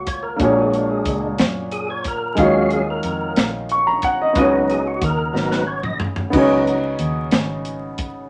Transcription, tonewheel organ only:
0.08 0.24 C#5 medium
0.23 0.57 A#4 medium
0.40 1.35 G#3 medium
0.40 1.36 D4 medium
0.40 0.71 F#4 medium
0.58 0.69 G#4 medium
0.70 0.89 F#4 medium
0.70 0.74 G#4 medium
0.89 1.20 G#4 medium
1.72 1.89 G#4 medium
1.90 2.06 C#5 loud
2.08 2.40 A#4 medium
2.37 2.82 F#3 medium
2.37 2.82 G#3 medium
2.37 2.82 C#4 medium
2.37 2.70 F#4 medium
2.37 2.82 F5 medium
2.73 2.89 G#4 medium
2.90 3.51 A#4 medium
4.35 4.79 F#3 medium
4.35 4.80 B3 medium
4.35 4.81 D#4 medium
4.35 4.52 G#4 medium
4.70 4.86 G#4 medium
4.87 5.03 F#4 medium
5.04 5.54 A#4 loud
5.33 5.64 F#3 soft
5.33 5.64 B3 soft
5.33 5.64 D#4 medium
5.51 5.68 B4 loud
5.67 5.83 C#5 loud
5.83 5.98 D#5 medium
6.33 6.77 F#3 medium
6.33 6.77 B3 soft
6.33 6.77 D#4 medium

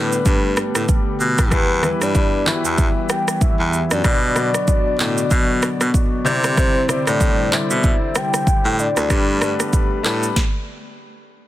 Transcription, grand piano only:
0.00 1.54 G3 medium
0.00 1.54 D4 medium
0.00 1.54 A4 medium
0.00 1.53 B4 medium
1.51 1.75 E3 medium
1.51 1.75 E4 medium
1.51 1.76 G4 medium
1.51 1.76 B4 medium
1.82 2.29 E3 medium
1.82 2.29 E4 medium
1.82 2.29 G4 medium
1.82 2.30 B4 medium
2.46 3.35 E3 medium
2.46 3.35 E4 medium
2.46 2.55 F#4 medium
2.46 3.36 B4 medium
2.54 3.39 G4 medium
4.03 4.27 B2 medium
4.03 4.28 B3 medium
4.03 4.28 F#4 medium
4.03 4.29 D5 medium
4.35 4.81 B2 medium
4.35 4.82 B3 medium
4.35 4.82 F#4 medium
4.35 4.83 D5 medium
4.98 5.87 B2 medium
4.98 5.88 B3 medium
4.98 5.88 F#4 medium
4.98 5.89 D5 medium
6.25 6.78 C3 loud
6.25 6.78 C4 medium
6.25 6.79 E4 medium
6.25 6.79 D5 loud
6.88 7.34 C3 medium
6.88 7.34 C4 medium
6.88 7.35 E4 medium
6.88 7.35 D5 medium
7.51 8.40 D3 medium
7.51 8.41 E4 medium
7.51 8.40 C5 medium
7.51 8.41 D5 medium
9.09 9.33 G3 medium
9.09 9.33 D4 medium
9.09 9.34 A4 medium
9.09 9.34 B4 medium
9.40 9.86 G3 medium
9.40 9.87 D4 medium
9.40 9.87 A4 medium
9.40 9.88 B4 medium
10.03 10.36 G3 medium
10.03 10.36 D4 medium
10.03 10.36 A4 medium
10.03 10.37 B4 loud

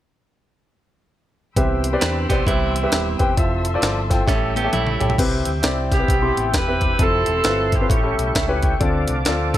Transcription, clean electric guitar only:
2.01 2.28 D4 medium
2.01 2.28 B4 medium
2.29 2.46 B3 medium
2.29 2.46 G4 medium
2.47 3.16 G3 medium
2.47 3.16 E4 medium
4.28 4.55 C#4 medium
4.28 4.54 A4 medium
4.57 4.73 B3 medium
4.57 4.73 G4 medium
4.73 5.17 G3 medium
4.73 5.16 E4 medium

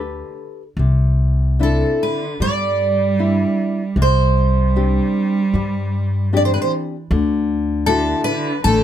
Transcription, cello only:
0.00 0.34 D3 medium
1.62 1.99 C3 medium
2.02 2.38 D3 medium
2.43 3.95 G3 medium
4.03 6.35 G3 medium
6.35 6.42 F#3 medium
6.43 6.52 E3 medium
6.54 6.62 D3 medium
6.62 6.71 E3 medium
7.88 8.24 D3 medium
8.26 8.63 D3 medium
8.64 8.84 D3 loud

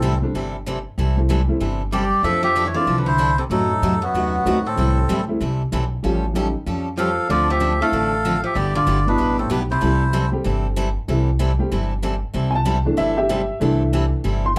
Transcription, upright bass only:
0.00 0.21 C2 medium
0.34 0.85 G1 medium
0.98 1.48 C2 medium
1.61 2.11 G1 medium
2.23 2.74 F2 medium
2.87 3.37 C2 medium
3.50 3.75 F#2 medium
3.82 4.09 F2 medium
4.14 4.40 D#2 medium
4.45 4.72 D2 medium
4.77 5.02 C2 medium
5.09 5.35 D2 medium
5.40 5.67 C2 medium
5.72 5.99 B1 medium
6.03 6.54 A1 medium
6.67 7.17 F2 medium
7.29 7.80 D2 medium
7.92 8.43 A1 medium
8.55 8.81 G1 medium
8.87 9.14 G1 medium
9.19 9.46 A1 medium
9.50 9.77 B1 medium
9.82 10.33 C2 medium
10.45 10.96 G1 medium
11.09 11.59 C2 medium
11.72 12.22 G1 medium
12.34 12.85 C2 medium
12.97 13.48 G1 medium
13.61 14.11 C2 medium
14.24 14.59 G1 medium

